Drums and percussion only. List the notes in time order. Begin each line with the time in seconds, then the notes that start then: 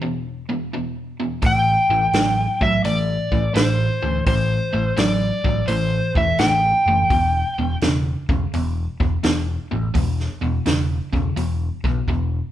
1.42 kick, open hi-hat
2.13 snare, open hi-hat
2.61 kick
2.85 open hi-hat
3.32 kick
3.55 snare, open hi-hat
4.26 kick, open hi-hat
4.97 snare, open hi-hat
5.44 kick
5.68 open hi-hat
6.15 kick
6.38 snare, open hi-hat
7.10 kick, open hi-hat
7.81 snare, open hi-hat
8.29 kick
8.54 open hi-hat
9.00 kick
9.23 snare, open hi-hat
9.95 kick, open hi-hat
10.20 snare
10.66 snare, open hi-hat
11.13 kick
11.37 open hi-hat
11.84 kick
12.08 kick